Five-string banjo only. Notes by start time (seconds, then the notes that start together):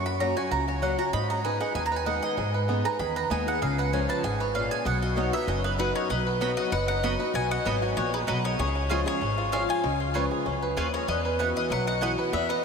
0.06 F#4
0.21 C#4
0.37 F#4
0.52 F#4
0.68 F#4
0.82 C#4
0.99 F#4
1.13 D#4
1.30 G#4
1.45 B4
1.61 D#4
1.75 G#4
1.92 B4
2.06 D#4
2.23 G#4
2.38 G#4
2.54 B4
2.69 B3
2.85 B4
3.00 G#4
3.16 B4
3.31 B3
3.47 G#4
3.62 G#4
3.78 B4
3.93 C#4
4.09 B4
4.24 G#4
4.40 B4
4.55 C#4
4.71 G#4
4.86 B3
5.02 F#4
5.17 D#4
5.34 B3
5.48 F#4
5.64 B3
5.79 B4
5.96 D#4
6.10 D#4
6.26 B4
6.41 B3
6.57 F#4
6.72 B4
6.89 D#4
7.04 F#4
7.20 B4
7.35 F#4
7.51 B3
7.66 D#4
7.82 F#4
7.97 B3
8.14 D#4
8.28 F#3
8.44 D#4
8.59 G#4
8.76 C#4
8.90 F4
9.07 G#4
9.21 C#4
9.38 F4
9.53 G#3
9.69 F4
9.84 G#3
10.00 F4
10.15 B4
10.31 G#4
10.46 C#4
10.63 B4
10.77 C#4
10.94 G#4
11.09 B3
11.25 B4
11.40 F#4
11.56 E4
11.71 F#3
11.88 F#4
12.02 B3
12.18 B4
12.33 B3
12.49 B4